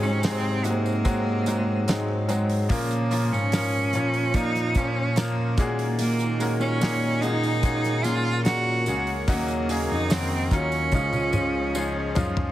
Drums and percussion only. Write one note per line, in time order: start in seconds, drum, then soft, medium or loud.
0.03 tambourine soft
0.23 snare loud
0.23 hi-hat pedal medium
0.23 open hi-hat loud
0.23 tambourine medium
0.64 hi-hat pedal medium
0.64 open hi-hat medium
0.64 tambourine soft
0.86 tambourine soft
1.05 kick medium
1.05 hi-hat pedal medium
1.05 open hi-hat medium
1.05 tambourine medium
1.46 hi-hat pedal medium
1.46 open hi-hat medium
1.46 tambourine medium
1.88 snare loud
1.88 hi-hat pedal medium
1.88 open hi-hat loud
1.88 tambourine medium
2.29 hi-hat pedal medium
2.29 open hi-hat medium
2.29 tambourine soft
2.50 open hi-hat medium
2.70 kick loud
2.70 hi-hat pedal medium
2.70 open hi-hat medium
2.70 tambourine medium
2.90 hi-hat pedal medium
2.90 tambourine soft
3.11 hi-hat pedal medium
3.11 open hi-hat medium
3.11 tambourine medium
3.34 tambourine soft
3.52 snare loud
3.52 hi-hat pedal medium
3.52 open hi-hat loud
3.52 tambourine medium
3.93 hi-hat pedal medium
3.93 open hi-hat medium
3.93 tambourine medium
4.14 open hi-hat medium
4.34 kick loud
4.34 hi-hat pedal medium
4.34 open hi-hat medium
4.34 tambourine medium
4.55 snare soft
4.55 hi-hat pedal medium
4.75 kick loud
4.75 hi-hat pedal medium
4.75 open hi-hat medium
4.75 tambourine medium
5.16 snare loud
5.16 hi-hat pedal medium
5.16 open hi-hat medium
5.16 tambourine medium
5.58 kick loud
5.58 hi-hat pedal medium
5.58 open hi-hat medium
5.58 tambourine medium
5.79 open hi-hat medium
5.99 hi-hat pedal medium
5.99 open hi-hat loud
5.99 tambourine medium
6.19 hi-hat pedal medium
6.19 tambourine soft
6.40 hi-hat pedal medium
6.40 open hi-hat medium
6.40 tambourine medium
6.61 tambourine soft
6.81 snare loud
6.81 hi-hat pedal medium
6.81 open hi-hat loud
6.81 tambourine medium
7.22 hi-hat pedal medium
7.22 open hi-hat medium
7.22 tambourine soft
7.43 open hi-hat medium
7.43 tambourine soft
7.63 kick loud
7.63 hi-hat pedal medium
7.63 open hi-hat medium
7.63 tambourine soft
7.84 snare soft
7.84 hi-hat pedal medium
8.04 hi-hat pedal medium
8.04 open hi-hat medium
8.04 tambourine medium
8.45 snare loud
8.45 hi-hat pedal medium
8.45 open hi-hat loud
8.45 tambourine medium
8.86 hi-hat pedal medium
8.86 open hi-hat medium
8.86 tambourine medium
9.07 open hi-hat medium
9.28 kick loud
9.28 hi-hat pedal medium
9.28 open hi-hat medium
9.28 tambourine medium
9.48 hi-hat pedal medium
9.48 tambourine soft
9.69 hi-hat pedal medium
9.69 open hi-hat medium
9.69 tambourine medium
10.10 snare loud
10.10 hi-hat pedal medium
10.10 open hi-hat loud
10.10 tambourine medium
10.51 kick loud
10.51 hi-hat pedal medium
10.51 open hi-hat medium
10.51 tambourine medium
10.72 open hi-hat medium
10.72 tambourine soft
10.92 kick loud
10.92 high tom medium
10.92 tambourine medium
11.13 high tom medium
11.13 tambourine soft
11.33 mid tom medium
11.33 tambourine medium
11.75 tambourine medium
12.15 floor tom loud
12.15 tambourine medium
12.37 floor tom loud